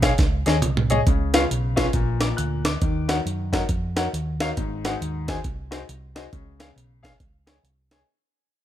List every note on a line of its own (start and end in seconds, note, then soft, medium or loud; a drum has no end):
0.00 0.12 B1 medium
0.00 0.11 G#4 medium
0.00 0.11 C#5 medium
0.00 0.11 F5 medium
0.00 kick medium
0.00 snare loud
0.00 closed hi-hat medium
0.18 0.42 C#2 loud
0.18 kick loud
0.18 snare medium
0.18 closed hi-hat medium
0.46 0.61 D#2 medium
0.46 0.55 G#4 medium
0.46 0.55 C#5 medium
0.46 0.55 D#5 medium
0.46 snare medium
0.46 closed hi-hat medium
0.62 1.00 C2 medium
0.62 closed hi-hat loud
0.62 mid tom medium
0.77 floor tom loud
0.90 0.99 G#4 medium
0.90 0.99 C#5 medium
0.90 0.99 D#5 loud
0.90 closed hi-hat medium
0.90 floor tom medium
1.07 1.44 C#2 loud
1.07 1.74 C#3 medium
1.07 kick loud
1.07 closed hi-hat medium
1.34 1.42 C#4 medium
1.34 1.42 F4 medium
1.34 1.42 G#4 medium
1.34 1.42 B4 medium
1.34 1.42 F5 medium
1.34 snare loud
1.34 closed hi-hat medium
1.51 1.88 B1 medium
1.51 closed hi-hat medium
1.76 1.85 C#4 medium
1.76 1.86 F4 medium
1.76 1.86 G#4 medium
1.76 1.86 B4 medium
1.76 1.86 F5 medium
1.76 kick medium
1.76 snare loud
1.76 closed hi-hat medium
1.93 2.31 A#1 loud
1.93 2.61 A#2 medium
1.93 kick loud
1.93 closed hi-hat loud
2.21 2.37 D6 medium
2.21 snare medium
2.21 closed hi-hat medium
2.37 2.76 D2 medium
2.37 2.63 F#6 medium
2.37 closed hi-hat loud
2.65 3.07 D6 medium
2.65 snare loud
2.65 closed hi-hat medium
2.82 3.19 D#2 loud
2.82 3.49 D#3 medium
2.82 kick loud
2.82 closed hi-hat medium
3.08 3.17 D#4 medium
3.08 3.17 F#4 medium
3.08 3.18 A#4 medium
3.08 3.18 C#5 medium
3.08 3.18 F#5 medium
3.08 snare loud
3.08 closed hi-hat medium
3.26 3.63 F#2 medium
3.26 closed hi-hat medium
3.52 3.61 D#4 medium
3.52 3.61 F#4 medium
3.52 3.61 A#4 medium
3.52 3.61 C#5 medium
3.52 3.61 F#5 medium
3.52 kick loud
3.52 snare loud
3.52 closed hi-hat medium
3.69 4.07 F2 medium
3.69 kick loud
3.69 closed hi-hat loud
3.96 4.05 D#4 medium
3.96 4.05 F#4 medium
3.96 4.05 A#4 medium
3.96 4.05 C#5 medium
3.96 4.05 F#5 medium
3.96 snare loud
3.96 closed hi-hat medium
4.13 4.51 D#2 loud
4.13 closed hi-hat loud
4.40 4.49 D#4 medium
4.40 4.49 F#4 medium
4.40 4.49 A#4 medium
4.40 4.49 C#5 medium
4.40 4.49 F5 loud
4.40 snare loud
4.40 closed hi-hat medium
4.57 4.95 G#1 loud
4.57 5.24 G#2 medium
4.57 kick loud
4.57 closed hi-hat medium
4.85 4.93 D#4 medium
4.85 4.93 F#4 medium
4.85 4.93 G#4 medium
4.85 4.93 C5 medium
4.85 4.93 F#5 loud
4.85 snare loud
4.85 closed hi-hat medium
5.01 5.38 D#2 medium
5.01 closed hi-hat medium
5.28 5.36 D#4 medium
5.28 5.37 F#4 medium
5.28 5.37 G#4 medium
5.28 5.37 C5 medium
5.28 5.37 G#5 loud
5.28 kick loud
5.28 snare loud
5.28 closed hi-hat medium
5.44 5.82 C2 loud
5.44 kick loud
5.44 closed hi-hat medium
5.71 5.80 D#4 medium
5.71 5.80 F#4 medium
5.71 5.80 G#4 medium
5.71 5.80 C5 medium
5.71 5.80 D#5 medium
5.71 snare loud
5.71 closed hi-hat medium
5.89 6.26 C2 loud
5.89 closed hi-hat loud
6.16 6.24 D#4 medium
6.16 6.24 F#4 medium
6.16 6.24 G#4 medium
6.16 6.24 C5 medium
6.16 6.24 D#5 loud
6.16 snare loud
6.16 closed hi-hat medium
6.32 6.70 C#2 loud
6.32 7.00 C#3 medium
6.32 kick loud
6.32 closed hi-hat medium
6.59 6.68 G#4 medium
6.59 6.68 C#5 medium
6.59 6.68 F5 medium
6.59 snare loud
6.59 closed hi-hat medium
6.76 7.14 B1 medium
6.76 closed hi-hat medium
7.03 7.11 G#4 medium
7.03 7.12 C#5 medium
7.03 7.12 F5 loud
7.03 kick loud
7.03 snare loud
7.03 closed hi-hat medium
7.20 7.58 C#2 medium
7.20 kick loud
7.20 closed hi-hat medium
7.47 7.55 G#4 medium
7.47 7.56 C#5 medium
7.47 7.56 G#5 medium
7.47 snare loud
7.47 closed hi-hat medium
7.63 8.01 C2 loud
7.63 closed hi-hat loud
7.91 8.00 G#4 medium
7.91 8.00 C#5 medium
7.91 8.00 G#5 loud
7.91 snare loud
7.91 closed hi-hat medium